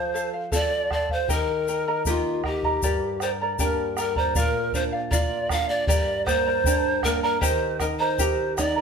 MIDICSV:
0, 0, Header, 1, 6, 480
1, 0, Start_track
1, 0, Key_signature, -2, "minor"
1, 0, Tempo, 767263
1, 807, Time_signature, 2, 2, 24, 8
1, 5512, End_track
2, 0, Start_track
2, 0, Title_t, "Charango"
2, 0, Program_c, 0, 24
2, 0, Note_on_c, 0, 69, 82
2, 0, Note_on_c, 0, 72, 84
2, 0, Note_on_c, 0, 77, 91
2, 80, Note_off_c, 0, 69, 0
2, 85, Note_off_c, 0, 72, 0
2, 88, Note_off_c, 0, 77, 0
2, 88, Note_on_c, 0, 69, 63
2, 93, Note_on_c, 0, 72, 61
2, 96, Note_on_c, 0, 77, 62
2, 201, Note_off_c, 0, 77, 0
2, 207, Note_off_c, 0, 69, 0
2, 209, Note_on_c, 0, 77, 50
2, 210, Note_off_c, 0, 72, 0
2, 220, Note_on_c, 0, 72, 42
2, 320, Note_off_c, 0, 72, 0
2, 320, Note_off_c, 0, 77, 0
2, 323, Note_on_c, 0, 69, 78
2, 328, Note_on_c, 0, 72, 80
2, 328, Note_on_c, 0, 77, 81
2, 562, Note_off_c, 0, 69, 0
2, 567, Note_off_c, 0, 72, 0
2, 567, Note_off_c, 0, 77, 0
2, 569, Note_on_c, 0, 69, 60
2, 574, Note_on_c, 0, 72, 63
2, 577, Note_on_c, 0, 77, 56
2, 686, Note_off_c, 0, 77, 0
2, 688, Note_off_c, 0, 69, 0
2, 691, Note_off_c, 0, 72, 0
2, 693, Note_on_c, 0, 77, 55
2, 700, Note_on_c, 0, 72, 48
2, 804, Note_off_c, 0, 72, 0
2, 806, Note_on_c, 0, 67, 82
2, 807, Note_off_c, 0, 77, 0
2, 810, Note_on_c, 0, 79, 80
2, 811, Note_on_c, 0, 70, 86
2, 813, Note_on_c, 0, 75, 82
2, 815, Note_on_c, 0, 82, 91
2, 1044, Note_off_c, 0, 79, 0
2, 1047, Note_off_c, 0, 67, 0
2, 1049, Note_off_c, 0, 70, 0
2, 1050, Note_off_c, 0, 75, 0
2, 1051, Note_off_c, 0, 82, 0
2, 1051, Note_on_c, 0, 79, 63
2, 1055, Note_on_c, 0, 70, 60
2, 1060, Note_on_c, 0, 75, 66
2, 1062, Note_on_c, 0, 82, 63
2, 1166, Note_off_c, 0, 82, 0
2, 1169, Note_off_c, 0, 79, 0
2, 1170, Note_off_c, 0, 75, 0
2, 1171, Note_off_c, 0, 70, 0
2, 1174, Note_on_c, 0, 82, 50
2, 1177, Note_on_c, 0, 75, 54
2, 1183, Note_on_c, 0, 70, 44
2, 1287, Note_off_c, 0, 70, 0
2, 1289, Note_off_c, 0, 82, 0
2, 1290, Note_off_c, 0, 75, 0
2, 1292, Note_on_c, 0, 67, 73
2, 1294, Note_on_c, 0, 79, 69
2, 1295, Note_on_c, 0, 70, 76
2, 1297, Note_on_c, 0, 75, 80
2, 1297, Note_on_c, 0, 82, 75
2, 1525, Note_off_c, 0, 79, 0
2, 1529, Note_off_c, 0, 70, 0
2, 1530, Note_off_c, 0, 67, 0
2, 1530, Note_off_c, 0, 75, 0
2, 1532, Note_off_c, 0, 82, 0
2, 1533, Note_on_c, 0, 79, 58
2, 1536, Note_on_c, 0, 70, 58
2, 1537, Note_on_c, 0, 75, 60
2, 1541, Note_on_c, 0, 82, 62
2, 1647, Note_off_c, 0, 82, 0
2, 1649, Note_off_c, 0, 75, 0
2, 1650, Note_off_c, 0, 79, 0
2, 1652, Note_off_c, 0, 70, 0
2, 1654, Note_on_c, 0, 82, 56
2, 1656, Note_on_c, 0, 75, 47
2, 1665, Note_on_c, 0, 70, 42
2, 1769, Note_off_c, 0, 70, 0
2, 1771, Note_off_c, 0, 82, 0
2, 1772, Note_off_c, 0, 75, 0
2, 1773, Note_on_c, 0, 67, 85
2, 1773, Note_on_c, 0, 79, 72
2, 1775, Note_on_c, 0, 74, 85
2, 1776, Note_on_c, 0, 70, 78
2, 1779, Note_on_c, 0, 82, 79
2, 2006, Note_off_c, 0, 79, 0
2, 2010, Note_off_c, 0, 67, 0
2, 2010, Note_off_c, 0, 70, 0
2, 2012, Note_off_c, 0, 74, 0
2, 2013, Note_off_c, 0, 82, 0
2, 2013, Note_on_c, 0, 79, 61
2, 2018, Note_on_c, 0, 70, 60
2, 2022, Note_on_c, 0, 74, 64
2, 2023, Note_on_c, 0, 82, 65
2, 2128, Note_off_c, 0, 82, 0
2, 2131, Note_off_c, 0, 79, 0
2, 2133, Note_off_c, 0, 70, 0
2, 2133, Note_off_c, 0, 74, 0
2, 2136, Note_on_c, 0, 82, 55
2, 2140, Note_on_c, 0, 74, 50
2, 2144, Note_on_c, 0, 70, 50
2, 2245, Note_off_c, 0, 74, 0
2, 2245, Note_off_c, 0, 82, 0
2, 2246, Note_off_c, 0, 70, 0
2, 2247, Note_on_c, 0, 67, 81
2, 2251, Note_on_c, 0, 79, 80
2, 2252, Note_on_c, 0, 74, 95
2, 2253, Note_on_c, 0, 70, 83
2, 2253, Note_on_c, 0, 82, 89
2, 2479, Note_off_c, 0, 79, 0
2, 2482, Note_off_c, 0, 70, 0
2, 2483, Note_off_c, 0, 74, 0
2, 2486, Note_off_c, 0, 82, 0
2, 2486, Note_on_c, 0, 79, 59
2, 2487, Note_off_c, 0, 67, 0
2, 2490, Note_on_c, 0, 70, 59
2, 2491, Note_on_c, 0, 74, 66
2, 2493, Note_on_c, 0, 82, 60
2, 2597, Note_off_c, 0, 82, 0
2, 2601, Note_off_c, 0, 74, 0
2, 2604, Note_off_c, 0, 70, 0
2, 2604, Note_on_c, 0, 82, 56
2, 2607, Note_off_c, 0, 79, 0
2, 2609, Note_on_c, 0, 74, 54
2, 2612, Note_on_c, 0, 70, 48
2, 2717, Note_off_c, 0, 70, 0
2, 2719, Note_off_c, 0, 74, 0
2, 2725, Note_on_c, 0, 70, 76
2, 2726, Note_off_c, 0, 82, 0
2, 2727, Note_on_c, 0, 74, 84
2, 2728, Note_on_c, 0, 77, 91
2, 2956, Note_off_c, 0, 70, 0
2, 2961, Note_off_c, 0, 74, 0
2, 2964, Note_on_c, 0, 70, 64
2, 2966, Note_off_c, 0, 77, 0
2, 2968, Note_on_c, 0, 74, 66
2, 2973, Note_on_c, 0, 77, 69
2, 3072, Note_off_c, 0, 77, 0
2, 3080, Note_on_c, 0, 77, 55
2, 3083, Note_off_c, 0, 74, 0
2, 3086, Note_off_c, 0, 70, 0
2, 3090, Note_on_c, 0, 74, 47
2, 3194, Note_off_c, 0, 74, 0
2, 3196, Note_on_c, 0, 70, 80
2, 3197, Note_off_c, 0, 77, 0
2, 3202, Note_on_c, 0, 74, 77
2, 3205, Note_on_c, 0, 77, 87
2, 3435, Note_off_c, 0, 70, 0
2, 3440, Note_off_c, 0, 74, 0
2, 3442, Note_on_c, 0, 70, 59
2, 3443, Note_off_c, 0, 77, 0
2, 3447, Note_on_c, 0, 74, 62
2, 3451, Note_on_c, 0, 77, 67
2, 3555, Note_off_c, 0, 77, 0
2, 3562, Note_off_c, 0, 74, 0
2, 3563, Note_on_c, 0, 77, 55
2, 3565, Note_off_c, 0, 70, 0
2, 3570, Note_on_c, 0, 74, 46
2, 3677, Note_off_c, 0, 74, 0
2, 3678, Note_off_c, 0, 77, 0
2, 3680, Note_on_c, 0, 67, 73
2, 3680, Note_on_c, 0, 79, 86
2, 3683, Note_on_c, 0, 70, 89
2, 3685, Note_on_c, 0, 74, 90
2, 3685, Note_on_c, 0, 82, 84
2, 3912, Note_off_c, 0, 79, 0
2, 3915, Note_off_c, 0, 70, 0
2, 3917, Note_off_c, 0, 74, 0
2, 3920, Note_off_c, 0, 82, 0
2, 3920, Note_on_c, 0, 79, 59
2, 3922, Note_on_c, 0, 70, 68
2, 3923, Note_off_c, 0, 67, 0
2, 3924, Note_on_c, 0, 74, 64
2, 3928, Note_on_c, 0, 82, 70
2, 4035, Note_off_c, 0, 82, 0
2, 4041, Note_off_c, 0, 74, 0
2, 4043, Note_off_c, 0, 79, 0
2, 4043, Note_on_c, 0, 82, 54
2, 4045, Note_off_c, 0, 70, 0
2, 4049, Note_on_c, 0, 74, 50
2, 4054, Note_on_c, 0, 70, 51
2, 4163, Note_off_c, 0, 70, 0
2, 4165, Note_off_c, 0, 82, 0
2, 4166, Note_on_c, 0, 67, 80
2, 4168, Note_off_c, 0, 74, 0
2, 4169, Note_on_c, 0, 79, 74
2, 4170, Note_on_c, 0, 70, 75
2, 4172, Note_on_c, 0, 82, 90
2, 4174, Note_on_c, 0, 74, 86
2, 4398, Note_off_c, 0, 79, 0
2, 4402, Note_off_c, 0, 70, 0
2, 4406, Note_off_c, 0, 67, 0
2, 4406, Note_off_c, 0, 74, 0
2, 4406, Note_off_c, 0, 82, 0
2, 4406, Note_on_c, 0, 79, 57
2, 4409, Note_on_c, 0, 70, 57
2, 4413, Note_on_c, 0, 74, 61
2, 4413, Note_on_c, 0, 82, 67
2, 4516, Note_off_c, 0, 82, 0
2, 4520, Note_off_c, 0, 74, 0
2, 4524, Note_off_c, 0, 70, 0
2, 4524, Note_on_c, 0, 82, 57
2, 4526, Note_off_c, 0, 79, 0
2, 4527, Note_on_c, 0, 74, 53
2, 4532, Note_on_c, 0, 70, 49
2, 4632, Note_off_c, 0, 70, 0
2, 4635, Note_off_c, 0, 82, 0
2, 4636, Note_on_c, 0, 67, 90
2, 4638, Note_off_c, 0, 74, 0
2, 4638, Note_on_c, 0, 79, 91
2, 4640, Note_on_c, 0, 70, 87
2, 4640, Note_on_c, 0, 75, 82
2, 4642, Note_on_c, 0, 82, 95
2, 4873, Note_off_c, 0, 79, 0
2, 4877, Note_off_c, 0, 70, 0
2, 4878, Note_off_c, 0, 75, 0
2, 4880, Note_on_c, 0, 79, 61
2, 4881, Note_off_c, 0, 67, 0
2, 4882, Note_off_c, 0, 82, 0
2, 4884, Note_on_c, 0, 70, 65
2, 4886, Note_on_c, 0, 75, 69
2, 4889, Note_on_c, 0, 82, 72
2, 4997, Note_off_c, 0, 82, 0
2, 4998, Note_off_c, 0, 75, 0
2, 5003, Note_off_c, 0, 79, 0
2, 5005, Note_off_c, 0, 70, 0
2, 5005, Note_on_c, 0, 82, 59
2, 5006, Note_on_c, 0, 75, 50
2, 5013, Note_on_c, 0, 70, 46
2, 5120, Note_off_c, 0, 75, 0
2, 5123, Note_off_c, 0, 70, 0
2, 5123, Note_on_c, 0, 67, 73
2, 5124, Note_on_c, 0, 79, 80
2, 5125, Note_off_c, 0, 82, 0
2, 5128, Note_on_c, 0, 75, 85
2, 5130, Note_on_c, 0, 70, 81
2, 5133, Note_on_c, 0, 82, 91
2, 5354, Note_off_c, 0, 79, 0
2, 5359, Note_off_c, 0, 70, 0
2, 5362, Note_off_c, 0, 75, 0
2, 5362, Note_off_c, 0, 82, 0
2, 5362, Note_on_c, 0, 79, 59
2, 5364, Note_off_c, 0, 67, 0
2, 5367, Note_on_c, 0, 70, 60
2, 5369, Note_on_c, 0, 75, 64
2, 5369, Note_on_c, 0, 82, 65
2, 5472, Note_off_c, 0, 82, 0
2, 5477, Note_off_c, 0, 75, 0
2, 5479, Note_off_c, 0, 70, 0
2, 5479, Note_on_c, 0, 82, 53
2, 5483, Note_off_c, 0, 79, 0
2, 5485, Note_on_c, 0, 75, 53
2, 5487, Note_on_c, 0, 70, 45
2, 5512, Note_off_c, 0, 70, 0
2, 5512, Note_off_c, 0, 75, 0
2, 5512, Note_off_c, 0, 82, 0
2, 5512, End_track
3, 0, Start_track
3, 0, Title_t, "Pan flute"
3, 0, Program_c, 1, 75
3, 0, Note_on_c, 1, 72, 94
3, 176, Note_off_c, 1, 72, 0
3, 337, Note_on_c, 1, 74, 97
3, 572, Note_off_c, 1, 74, 0
3, 580, Note_on_c, 1, 74, 85
3, 685, Note_off_c, 1, 74, 0
3, 705, Note_on_c, 1, 72, 81
3, 809, Note_off_c, 1, 72, 0
3, 823, Note_on_c, 1, 70, 90
3, 1270, Note_off_c, 1, 70, 0
3, 1297, Note_on_c, 1, 65, 75
3, 1540, Note_on_c, 1, 67, 81
3, 1549, Note_off_c, 1, 65, 0
3, 2008, Note_off_c, 1, 67, 0
3, 2012, Note_on_c, 1, 72, 73
3, 2066, Note_off_c, 1, 72, 0
3, 2259, Note_on_c, 1, 70, 75
3, 2477, Note_off_c, 1, 70, 0
3, 2495, Note_on_c, 1, 70, 78
3, 2613, Note_on_c, 1, 72, 75
3, 2622, Note_off_c, 1, 70, 0
3, 2733, Note_on_c, 1, 70, 88
3, 2742, Note_off_c, 1, 72, 0
3, 2967, Note_off_c, 1, 70, 0
3, 2971, Note_on_c, 1, 72, 79
3, 3025, Note_off_c, 1, 72, 0
3, 3203, Note_on_c, 1, 74, 84
3, 3428, Note_off_c, 1, 74, 0
3, 3448, Note_on_c, 1, 77, 89
3, 3558, Note_on_c, 1, 74, 85
3, 3568, Note_off_c, 1, 77, 0
3, 3672, Note_off_c, 1, 74, 0
3, 3676, Note_on_c, 1, 74, 97
3, 3904, Note_off_c, 1, 74, 0
3, 3915, Note_on_c, 1, 72, 103
3, 4402, Note_on_c, 1, 70, 86
3, 4411, Note_off_c, 1, 72, 0
3, 4521, Note_off_c, 1, 70, 0
3, 4525, Note_on_c, 1, 70, 79
3, 4631, Note_off_c, 1, 70, 0
3, 4635, Note_on_c, 1, 72, 95
3, 4863, Note_off_c, 1, 72, 0
3, 4879, Note_on_c, 1, 70, 82
3, 4916, Note_off_c, 1, 70, 0
3, 5002, Note_on_c, 1, 72, 90
3, 5338, Note_off_c, 1, 72, 0
3, 5362, Note_on_c, 1, 74, 93
3, 5512, Note_off_c, 1, 74, 0
3, 5512, End_track
4, 0, Start_track
4, 0, Title_t, "Nylon-string guitar"
4, 0, Program_c, 2, 24
4, 0, Note_on_c, 2, 53, 69
4, 330, Note_on_c, 2, 60, 54
4, 335, Note_on_c, 2, 65, 49
4, 337, Note_on_c, 2, 69, 58
4, 783, Note_off_c, 2, 53, 0
4, 795, Note_off_c, 2, 60, 0
4, 796, Note_off_c, 2, 65, 0
4, 798, Note_off_c, 2, 69, 0
4, 811, Note_on_c, 2, 51, 66
4, 1286, Note_on_c, 2, 58, 52
4, 1290, Note_on_c, 2, 63, 48
4, 1292, Note_on_c, 2, 67, 57
4, 1745, Note_off_c, 2, 51, 0
4, 1753, Note_off_c, 2, 58, 0
4, 1754, Note_off_c, 2, 63, 0
4, 1755, Note_off_c, 2, 67, 0
4, 1767, Note_on_c, 2, 43, 68
4, 2246, Note_on_c, 2, 55, 48
4, 2248, Note_on_c, 2, 58, 46
4, 2253, Note_on_c, 2, 62, 54
4, 2702, Note_off_c, 2, 43, 0
4, 2712, Note_off_c, 2, 55, 0
4, 2714, Note_off_c, 2, 58, 0
4, 2716, Note_off_c, 2, 62, 0
4, 2723, Note_on_c, 2, 46, 69
4, 2967, Note_on_c, 2, 62, 52
4, 3200, Note_off_c, 2, 62, 0
4, 3211, Note_on_c, 2, 65, 61
4, 3442, Note_off_c, 2, 65, 0
4, 3450, Note_on_c, 2, 62, 56
4, 3660, Note_off_c, 2, 46, 0
4, 3682, Note_off_c, 2, 62, 0
4, 3687, Note_on_c, 2, 43, 71
4, 3928, Note_on_c, 2, 58, 55
4, 4160, Note_off_c, 2, 58, 0
4, 4170, Note_on_c, 2, 62, 65
4, 4401, Note_off_c, 2, 62, 0
4, 4409, Note_on_c, 2, 58, 61
4, 4621, Note_off_c, 2, 43, 0
4, 4641, Note_off_c, 2, 58, 0
4, 4647, Note_on_c, 2, 51, 71
4, 4885, Note_on_c, 2, 63, 59
4, 5118, Note_off_c, 2, 63, 0
4, 5129, Note_on_c, 2, 67, 65
4, 5360, Note_off_c, 2, 67, 0
4, 5374, Note_on_c, 2, 63, 60
4, 5512, Note_off_c, 2, 51, 0
4, 5512, Note_off_c, 2, 63, 0
4, 5512, End_track
5, 0, Start_track
5, 0, Title_t, "Bombo"
5, 322, Note_on_c, 9, 43, 67
5, 385, Note_off_c, 9, 43, 0
5, 567, Note_on_c, 9, 37, 54
5, 567, Note_on_c, 9, 43, 50
5, 629, Note_off_c, 9, 37, 0
5, 629, Note_off_c, 9, 43, 0
5, 682, Note_on_c, 9, 43, 53
5, 744, Note_off_c, 9, 43, 0
5, 803, Note_on_c, 9, 43, 73
5, 866, Note_off_c, 9, 43, 0
5, 1282, Note_on_c, 9, 43, 68
5, 1345, Note_off_c, 9, 43, 0
5, 1525, Note_on_c, 9, 37, 55
5, 1525, Note_on_c, 9, 43, 47
5, 1587, Note_off_c, 9, 37, 0
5, 1587, Note_off_c, 9, 43, 0
5, 1645, Note_on_c, 9, 43, 56
5, 1708, Note_off_c, 9, 43, 0
5, 1765, Note_on_c, 9, 43, 75
5, 1828, Note_off_c, 9, 43, 0
5, 2002, Note_on_c, 9, 37, 53
5, 2065, Note_off_c, 9, 37, 0
5, 2243, Note_on_c, 9, 43, 69
5, 2306, Note_off_c, 9, 43, 0
5, 2482, Note_on_c, 9, 37, 58
5, 2544, Note_off_c, 9, 37, 0
5, 2600, Note_on_c, 9, 43, 64
5, 2663, Note_off_c, 9, 43, 0
5, 2721, Note_on_c, 9, 43, 81
5, 2783, Note_off_c, 9, 43, 0
5, 2956, Note_on_c, 9, 43, 56
5, 3019, Note_off_c, 9, 43, 0
5, 3198, Note_on_c, 9, 43, 78
5, 3261, Note_off_c, 9, 43, 0
5, 3437, Note_on_c, 9, 37, 64
5, 3437, Note_on_c, 9, 43, 62
5, 3500, Note_off_c, 9, 37, 0
5, 3500, Note_off_c, 9, 43, 0
5, 3673, Note_on_c, 9, 43, 91
5, 3736, Note_off_c, 9, 43, 0
5, 3920, Note_on_c, 9, 37, 57
5, 3920, Note_on_c, 9, 43, 58
5, 3983, Note_off_c, 9, 37, 0
5, 3983, Note_off_c, 9, 43, 0
5, 4155, Note_on_c, 9, 43, 79
5, 4217, Note_off_c, 9, 43, 0
5, 4398, Note_on_c, 9, 37, 56
5, 4398, Note_on_c, 9, 43, 60
5, 4461, Note_off_c, 9, 37, 0
5, 4461, Note_off_c, 9, 43, 0
5, 4637, Note_on_c, 9, 43, 76
5, 4700, Note_off_c, 9, 43, 0
5, 4877, Note_on_c, 9, 37, 54
5, 4877, Note_on_c, 9, 43, 54
5, 4939, Note_off_c, 9, 37, 0
5, 4939, Note_off_c, 9, 43, 0
5, 5120, Note_on_c, 9, 43, 68
5, 5182, Note_off_c, 9, 43, 0
5, 5367, Note_on_c, 9, 37, 56
5, 5367, Note_on_c, 9, 43, 53
5, 5429, Note_off_c, 9, 37, 0
5, 5429, Note_off_c, 9, 43, 0
5, 5512, End_track
6, 0, Start_track
6, 0, Title_t, "Drums"
6, 98, Note_on_c, 9, 82, 62
6, 161, Note_off_c, 9, 82, 0
6, 331, Note_on_c, 9, 82, 82
6, 394, Note_off_c, 9, 82, 0
6, 813, Note_on_c, 9, 82, 86
6, 876, Note_off_c, 9, 82, 0
6, 1051, Note_on_c, 9, 82, 64
6, 1114, Note_off_c, 9, 82, 0
6, 1288, Note_on_c, 9, 82, 88
6, 1350, Note_off_c, 9, 82, 0
6, 1768, Note_on_c, 9, 82, 96
6, 1831, Note_off_c, 9, 82, 0
6, 2011, Note_on_c, 9, 82, 67
6, 2074, Note_off_c, 9, 82, 0
6, 2246, Note_on_c, 9, 82, 92
6, 2309, Note_off_c, 9, 82, 0
6, 2486, Note_on_c, 9, 82, 66
6, 2548, Note_off_c, 9, 82, 0
6, 2726, Note_on_c, 9, 82, 99
6, 2788, Note_off_c, 9, 82, 0
6, 2969, Note_on_c, 9, 82, 68
6, 3032, Note_off_c, 9, 82, 0
6, 3209, Note_on_c, 9, 82, 98
6, 3271, Note_off_c, 9, 82, 0
6, 3449, Note_on_c, 9, 82, 71
6, 3511, Note_off_c, 9, 82, 0
6, 3692, Note_on_c, 9, 82, 97
6, 3754, Note_off_c, 9, 82, 0
6, 3931, Note_on_c, 9, 82, 73
6, 3994, Note_off_c, 9, 82, 0
6, 4170, Note_on_c, 9, 82, 106
6, 4233, Note_off_c, 9, 82, 0
6, 4414, Note_on_c, 9, 82, 75
6, 4476, Note_off_c, 9, 82, 0
6, 4649, Note_on_c, 9, 82, 104
6, 4711, Note_off_c, 9, 82, 0
6, 4884, Note_on_c, 9, 82, 73
6, 4946, Note_off_c, 9, 82, 0
6, 5125, Note_on_c, 9, 82, 95
6, 5187, Note_off_c, 9, 82, 0
6, 5366, Note_on_c, 9, 82, 69
6, 5429, Note_off_c, 9, 82, 0
6, 5512, End_track
0, 0, End_of_file